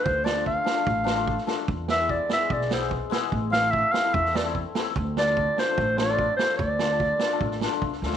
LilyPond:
<<
  \new Staff \with { instrumentName = "Clarinet" } { \time 4/4 \tempo 4 = 147 c''8 d''8 f''2~ f''8 r8 | r8 e''8 d''8 e''8 d''8 c''8 r4 | r8 f''8 e''8 f''8 e''8 d''8 r4 | r8 d''4 c''4 d''4 c''8 |
d''2. r4 | }
  \new Staff \with { instrumentName = "Hammered dulcimer" } { \time 4/4 r8 <d' f'>16 <a d' f'>16 r8 <d' f'>16 <a d' f'>16 r8 <d' f'>16 <a d' f'>16 r8 <a d' f'>16 r16 | r8 <b e'>16 <gis b e'>16 r8 <b e'>16 <gis b e'>16 r8 <b e'>16 <gis b e'>16 r8 <gis b e'>16 r16 | r8 <c' e'>16 <a c' e'>16 r8 <c' e'>16 <a c' e'>16 r8 <c' e'>16 <a c' e'>16 r8 <a c' e'>16 r16 | r8 <d' f'>16 <a d' f'>16 r8 <d' f'>16 <a d' f'>16 r8 <d' f'>16 <a d' f'>16 r8 <a d' f'>16 r16 |
r8 <d' f'>16 <a d' f'>16 r8 <d' f'>16 <a d' f'>16 r8 <d' f'>16 <a d' f'>16 r8 <a d' f'>16 r16 | }
  \new Staff \with { instrumentName = "Upright bass" } { \clef bass \time 4/4 d,2 a,,2 | e,2 b,,2 | a,,2 e,2 | d,2 a,,2 |
d,2 a,,4 c,8 d,8 | }
  \new DrumStaff \with { instrumentName = "Drums" } \drummode { \time 4/4 bd8 sn8 bd8 sn8 bd8 sn8 bd16 sn16 sn8 | bd8 sn8 bd8 sn8 bd16 sn16 sn16 sn16 bd8 sn8 | bd8 sn8 bd8 sn8 bd16 sn16 sn8 bd8 sn8 | bd8 sn8 bd8 sn8 bd8 sn8 bd8 sn8 |
bd8 sn8 bd8 sn8 bd16 sn16 sn8 bd16 sn16 sn16 sn16 | }
>>